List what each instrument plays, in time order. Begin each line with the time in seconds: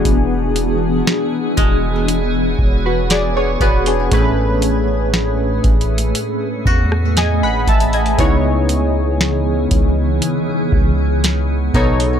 Already playing: synth keys E3 B3 D4 F#4 G#4, ambient pad E3 B3 D4 G#4
0.05 808-style bass E1, kick, closed hi-hat
0.56 closed hi-hat
1.07 snare
1.57 808-style bass E1, koto G#3, ambient pad C#5, kick, closed hi-hat
2.08 closed hi-hat
2.59 808-style bass E1, kick
2.86 synth keys F#4 B4
3.10 synth keys G#4 D5, snare, closed hi-hat
3.37 synth keys G#4 C#5
3.60 808-style bass E1, koto B3, synth keys F#4 B4, kick, closed hi-hat
3.86 synth keys D4 G#4, closed hi-hat
4.12 808-style bass A1, synth keys A2 A3 C#4 G#4 B4, ambient pad A3 G#4, kick, closed hi-hat
4.62 closed hi-hat
5.14 snare
5.64 808-style bass A1, kick, closed hi-hat
5.81 closed hi-hat
5.98 closed hi-hat
6.15 closed hi-hat
6.65 808-style bass E2, koto F#4, kick
6.92 cross-stick
7.17 synth keys D#5 G#5, snare, closed hi-hat
7.42 808-style bass G#1, synth keys F#5 B5
7.67 808-style bass A1, synth keys E5 A5, kick, closed hi-hat
7.80 closed hi-hat
7.93 synth keys D#5 G#5, closed hi-hat
8.06 closed hi-hat
8.18 808-style bass C#2, synth keys C#3 B3 D#4 E4 C#5, ambient pad C#3 E3 B3, kick, closed hi-hat
8.69 closed hi-hat
9.21 snare
9.71 808-style bass C#2, kick, closed hi-hat
10.22 closed hi-hat
10.72 808-style bass C#2, kick
11.24 snare, closed hi-hat
11.74 808-style bass B1, synth keys B2 B3 D#4 A4 C#5, ambient pad A3 D#4, koto D#4, kick, closed hi-hat
12.00 closed hi-hat